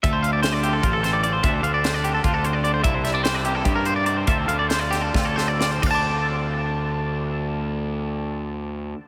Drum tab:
CC |-------|-------|-------|-------|
HH |xxxxxxx|xxxxxxx|xxxxxxx|xxxx---|
SD |--o--o-|--o----|-oo----|--ooooo|
BD |o---o--|o---o--|o---o--|o---o--|

CC |x------|-------|
HH |-------|-------|
SD |-------|-------|
BD |o------|-------|